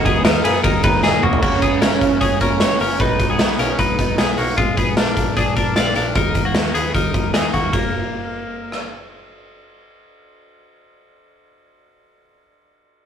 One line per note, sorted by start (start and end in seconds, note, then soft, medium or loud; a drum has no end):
0.00 0.15 D#3 loud
0.00 0.16 F#3 medium
0.00 0.15 A#3 loud
0.00 0.14 D#4 loud
0.05 0.22 D#2 loud
0.05 0.25 B3 medium
0.05 0.24 G#4 medium
0.05 kick medium
0.05 ride medium
0.15 0.44 F#3 soft
0.15 0.44 A#3 medium
0.15 0.45 D#4 medium
0.25 0.41 D#2 loud
0.25 0.45 D#4 medium
0.25 0.44 A#4 medium
0.25 snare loud
0.25 ride medium
0.44 0.60 F#2 medium
0.44 0.82 D#3 medium
0.44 0.83 F#3 medium
0.44 0.84 A#3 medium
0.44 0.64 B3 medium
0.44 0.83 D#4 medium
0.44 0.63 G#4 medium
0.44 ride medium
0.64 0.80 D#2 medium
0.64 0.83 D#4 medium
0.64 0.83 A#4 medium
0.64 kick medium
0.64 ride medium
0.83 1.00 D#2 medium
0.83 1.01 D#3 medium
0.83 1.02 F#3 medium
0.83 1.03 A#3 medium
0.83 1.03 D#4 medium
0.83 1.03 B4 medium
0.83 kick loud
0.83 ride medium
1.02 1.19 D#2 loud
1.02 1.13 D#3 medium
1.02 1.13 F#3 medium
1.02 1.13 A#3 medium
1.02 1.23 D#4 medium
1.02 1.12 D#4 medium
1.02 1.23 G#4 medium
1.02 snare medium
1.13 1.42 F#3 soft
1.13 1.42 A#3 medium
1.13 1.43 D#4 medium
1.22 1.39 F1 loud
1.22 1.42 A#3 medium
1.22 1.41 F#4 medium
1.22 mid tom loud
1.33 floor tom loud
1.42 1.59 F#1 medium
1.42 1.80 F#2 medium
1.42 1.81 C#3 medium
1.42 1.82 F#3 medium
1.42 1.63 A#3 medium
1.42 1.81 A#3 medium
1.42 1.81 C#4 medium
1.42 1.62 F#4 medium
1.42 kick loud
1.42 crash medium
1.62 1.78 F#1 medium
1.62 1.82 B3 medium
1.62 1.81 G#4 medium
1.62 kick medium
1.62 closed hi-hat medium
1.81 1.98 F#1 medium
1.81 2.11 F#2 medium
1.81 2.11 C#3 medium
1.81 2.11 F#3 medium
1.81 2.10 A#3 medium
1.81 2.19 C#4 medium
1.81 2.09 C#4 medium
1.81 2.19 A#4 medium
1.81 snare loud
1.81 closed hi-hat medium
2.01 2.18 F#1 medium
2.01 kick medium
2.01 closed hi-hat medium
2.10 2.39 F#3 soft
2.10 2.39 A#3 soft
2.10 2.40 C#4 medium
2.21 2.37 F#1 medium
2.21 2.40 C#4 medium
2.21 2.40 G#4 medium
2.21 kick medium
2.21 closed hi-hat medium
2.40 2.57 F#1 medium
2.40 2.70 F#2 medium
2.40 2.70 C#3 medium
2.40 2.70 F#3 medium
2.40 2.69 A#3 medium
2.40 2.68 C#4 medium
2.40 2.61 C#4 medium
2.40 2.60 A#4 medium
2.40 kick medium
2.40 closed hi-hat medium
2.60 2.77 F#1 medium
2.60 2.81 F#4 medium
2.60 2.80 C#5 medium
2.60 snare medium
2.60 closed hi-hat medium
2.70 2.98 F#3 soft
2.70 2.99 A#3 soft
2.70 3.00 C#4 medium
2.80 2.97 F#1 loud
2.80 3.01 C#4 medium
2.80 3.00 A#4 medium
2.80 open hi-hat soft
2.99 3.16 B1 medium
2.99 3.37 B2 medium
2.99 3.38 F#3 medium
2.99 3.38 B3 medium
2.99 3.38 D#4 medium
2.99 3.28 D#4 medium
2.99 3.28 B4 medium
2.99 kick loud
2.99 closed hi-hat medium
3.19 3.36 B1 medium
3.19 kick medium
3.19 closed hi-hat medium
3.30 3.58 B3 medium
3.30 3.57 G#4 medium
3.38 3.55 B1 medium
3.38 3.68 B2 medium
3.38 3.69 F#3 medium
3.38 3.68 B3 medium
3.38 3.67 D#4 medium
3.38 snare medium
3.38 closed hi-hat medium
3.59 3.75 B1 medium
3.59 3.79 C#4 medium
3.59 3.79 A#4 medium
3.59 closed hi-hat medium
3.68 3.98 F#3 soft
3.68 3.98 B3 soft
3.68 3.98 D#4 medium
3.79 3.95 B1 medium
3.79 4.16 D#4 medium
3.79 4.16 B4 medium
3.79 kick medium
3.79 closed hi-hat medium
3.98 4.15 B1 medium
3.98 4.28 B2 medium
3.98 4.29 F#3 medium
3.98 4.28 B3 medium
3.98 4.27 D#4 medium
3.98 kick medium
3.98 closed hi-hat medium
4.18 4.34 B1 medium
4.18 4.38 B3 medium
4.18 4.38 G#4 medium
4.18 snare medium
4.18 closed hi-hat medium
4.28 4.59 F#3 soft
4.28 4.58 B3 soft
4.28 4.58 D#4 soft
4.38 4.54 B1 medium
4.38 4.58 A#3 medium
4.38 4.57 F#4 medium
4.38 open hi-hat medium
4.57 4.74 A#1 loud
4.57 4.78 G#3 medium
4.57 4.77 F4 medium
4.57 kick loud
4.57 closed hi-hat medium
4.77 4.94 A#1 medium
4.77 4.97 B3 medium
4.77 4.97 G#4 medium
4.77 kick medium
4.77 closed hi-hat medium
4.97 5.13 A#1 medium
4.97 5.35 D4 medium
4.97 5.34 A#4 medium
4.97 snare loud
4.97 closed hi-hat medium
5.17 5.33 A#1 medium
5.17 kick medium
5.17 closed hi-hat medium
5.37 5.53 A#1 medium
5.37 5.56 D4 medium
5.37 5.56 G#4 medium
5.37 kick medium
5.37 closed hi-hat medium
5.56 5.73 A#1 medium
5.56 5.77 D4 soft
5.56 5.76 A#4 medium
5.56 kick medium
5.56 closed hi-hat medium
5.76 5.92 A#1 medium
5.76 5.96 F4 medium
5.76 5.96 D5 medium
5.76 snare medium
5.76 closed hi-hat medium
5.96 6.12 A#1 medium
5.96 6.16 D4 medium
5.96 6.15 A#4 medium
5.96 closed hi-hat soft
6.15 6.32 D#2 loud
6.15 6.44 D#4 medium
6.15 6.44 A#4 medium
6.15 kick loud
6.15 closed hi-hat medium
6.35 6.51 D#2 medium
6.35 kick medium
6.35 closed hi-hat medium
6.45 6.74 A#3 medium
6.45 6.73 F#4 medium
6.54 6.71 D#2 medium
6.54 snare medium
6.54 closed hi-hat medium
6.74 6.91 D#2 medium
6.74 6.95 B3 medium
6.74 6.94 G#4 medium
6.74 closed hi-hat medium
6.95 7.11 D#2 medium
6.95 7.32 D#4 medium
6.95 7.32 A#4 medium
6.95 kick medium
6.95 closed hi-hat medium
7.14 7.30 D#2 medium
7.14 kick medium
7.14 closed hi-hat medium
7.34 7.50 D#2 medium
7.34 7.53 D#4 soft
7.34 7.54 G#4 medium
7.34 snare medium
7.34 closed hi-hat medium
7.54 7.70 D#2 medium
7.54 7.72 A#3 soft
7.54 7.73 F#4 medium
7.54 kick medium
7.54 closed hi-hat soft
7.73 12.06 F#1 medium
7.73 8.88 A#3 medium
7.73 kick medium
7.73 ride medium
8.72 cross-stick soft